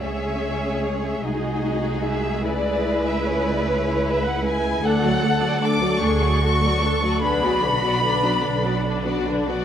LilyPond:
<<
  \new Staff \with { instrumentName = "Violin section" } { \time 6/8 \key cis \phrygian \tempo 4. = 50 e''4 cis''16 e''16 dis''4 e''8 | d''8. e''16 cis''16 d''16 cis''8 e''16 fis''16 gis''8 | fis''4 d'''8 cis'''4. | b''2~ b''8 r8 | }
  \new Staff \with { instrumentName = "Violin section" } { \time 6/8 \key cis \phrygian << { cis''4. gis'4.~ | gis'2. | a'16 d''16 a'16 d''16 a'16 d''16 a'16 d''16 a'16 d''16 a'16 d''16 | b'16 d''16 b'16 d''16 b'16 d''16 b'16 d''16 b'16 d''16 b'16 d''16 | } \\ { gis'4. fis'4. | e'2. | a'16 fis'16 a'16 fis'16 a'16 fis'16 a'16 fis'16 a'16 fis'16 a'16 fis'16 | d'16 fis'16 d'16 fis'16 d'16 fis'16 d'16 fis'16 d'16 fis'16 d'16 fis'16 | } >> }
  \new Staff \with { instrumentName = "Cello section" } { \time 6/8 \key cis \phrygian gis'4. gis'4. | b'2. | a'4. gis'8 fis'8 a'8 | gis'8 fis'8 d'2 | }
  \new Staff \with { instrumentName = "Viola section" } { \time 6/8 \key cis \phrygian << { cis'4. dis'4. | e'2. | d'16 a16 d'16 a16 d'16 a16 d'16 a16 d'16 a16 d'16 a16 | d'16 b16 d'16 b16 d'16 b16 d'16 b16 d'16 b16 d'16 b16 | } \\ { gis2.~ | gis2. | a16 fis16 a16 fis16 a16 fis16 a16 fis16 a16 fis16 a16 fis16 | d16 fis16 d16 fis16 d16 fis16 d16 fis16 d16 fis16 d16 fis16 | } >> }
  \new Staff \with { instrumentName = "Double bass section" } { \clef bass \time 6/8 \key cis \phrygian cis,4. bis,,4. | cis,2. | d,4. d,4. | b,,4. b,,4. | }
>>